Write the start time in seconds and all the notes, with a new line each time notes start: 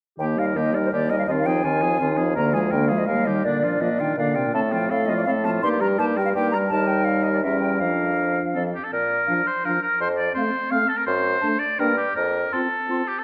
0.18 D#2 D#3 A#3 G4 G5
0.36 G3 D#4 A#4 F5
0.55 D#2 D#3 A#3 G4 D#5
0.74 G3 D#4 A#4 D5
0.85 C5
0.92 D#2 D#3 A#3 G4 D5
1.10 G3 D#4 A#4 D#5
1.19 F5
1.27 D#2 D#3 C4 F4 D#5
1.39 F5
1.46 F3 D#4 G#4 G5
1.63 D#2 D#3 C4 F4 G#5
1.82 F3 D#4 G#4
1.99 D#2 D#3 C4 F4
2.17 F3 D#4 G#4
2.35 D2 D3 A#3 A#4 A#5
2.53 F3 G#3 G#4 G#5
2.70 D2 D3 A#3 A#4 G5
2.88 F3 G#3 G#4 F5
2.98 D#5
3.06 D#2 G3 A#3 A#4 F5
3.25 D#3 G3 G4 D#5
3.42 A#2 D3 A#3 D4 D5
3.63 F3 D4 F4
3.80 A#2 F3 A#3 D4 D#5
3.99 D#3 D4 F4 G5
4.17 A#2 D3 A#3 D4 F5
4.35 C3 D4 F4 G5
4.46 A#2
4.53 A2 A3 C4 A4 A5
4.71 F3 A3 F4 G5
4.89 A2 A3 C4 A4 F5
5.06 F3 A3 F4 D#5
5.17 D5
5.25 A2 A3 C4 A4 F5
5.44 F3 A3 F4 A5
5.62 G2 A#3 D#4 G4 C6
5.80 G3 G4 A#4 A#5
5.99 G2 A#3 D#4 G4 A5
6.17 G3 G4 A#4 G5
6.25 F5
6.34 G2 A#3 D#4 G4 G5
6.51 G3 G4 A#4 A#5
6.68 D#2 G3 D#4 A#4 A5
6.88 G5
7.05 F5
7.23 D#5
7.33 D5
7.42 E2 G3 C#4 A#4 E5
7.60 G5
7.78 F2 F3 D4 A#4 F5
8.55 F2 F3 C4 A4
8.75 G4
8.84 A4
8.92 A#2 A#4
9.27 F3 D4 F5
9.47 C5
9.65 F3 D4 A#4 F5
9.83 A#4
10.00 F2 C5
10.18 D5
10.34 A3 C4 C5 F5
10.71 A3 C4 F5
10.88 A4
10.97 A#4
11.06 F#2 C5
11.41 A3 D4 A5
11.59 D5
11.79 G2 A#3 D4 A#4 G5
11.97 G4
12.16 F2 A#4
12.52 C4 F4 A4 C6
12.89 C4 F4 C6
13.07 G4
13.19 A4